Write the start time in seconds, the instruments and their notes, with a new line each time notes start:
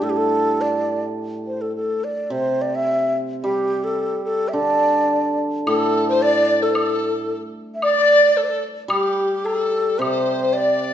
Already playing: hammered dulcimer G3 D4
0.02 hammered dulcimer A2, xiao A4
0.10 xiao G4
0.17 xiao A4
0.61 xiao D5
1.47 xiao C5
1.61 xiao A4
1.76 xiao A4
2.04 xiao D5
2.30 hammered dulcimer C3, xiao C5
2.61 xiao D5
2.75 xiao E5
3.43 hammered dulcimer G3, xiao G4
3.84 xiao A4
4.24 xiao A4
4.48 xiao E5
4.53 hammered dulcimer D3, xiao D5
5.66 hammered dulcimer A2, dizi A4, xiao A4, high woodblock
6.08 dizi C5, xiao C5
6.21 dizi D5, xiao D5
6.62 xiao A4, dizi A4
6.70 dizi C5
6.75 dizi A4, high woodblock
7.75 xiao E5
7.82 dizi D5, xiao D5, high woodblock
8.37 dizi A4
8.43 dizi C5
8.49 dizi A4
8.88 hammered dulcimer G3, dizi G4, xiao G4, high woodblock
9.45 xiao A4, dizi A4, low woodblock
9.88 dizi A4
9.99 hammered dulcimer C3, xiao C5, dizi C5, high woodblock
10.42 dizi C5
10.53 xiao D5
10.58 dizi D5